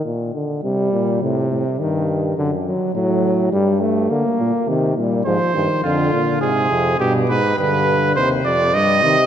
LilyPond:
<<
  \new Staff \with { instrumentName = "Trumpet" } { \time 4/4 \key c \minor \tempo 4 = 104 r1 | r1 | r4 c''4 f'4 aes'4 | g'8 b'8 b'4 c''8 d''8 ees''4 | }
  \new Staff \with { instrumentName = "Trombone" } { \clef bass \time 4/4 \key c \minor r4 g4 c4 ees4 | d8 fis8 fis4 g8 a8 bes4 | ees8 g8 f8 ees8 d8 d8 c4 | b,8 r8 d4 c4 g8 ees8 | }
  \new Staff \with { instrumentName = "Euphonium" } { \clef bass \time 4/4 \key c \minor bes,8 d8 c8 bes,8 a,8 a,8 g,4 | fis,8 r8 a,4 g,4 d8 bes,8 | c8 bes,8 aes,8 g,8 f,8 bes,8 aes,8 f,8 | g,8 aes,8 g,4 ees,8 f,8 g,8 c8 | }
>>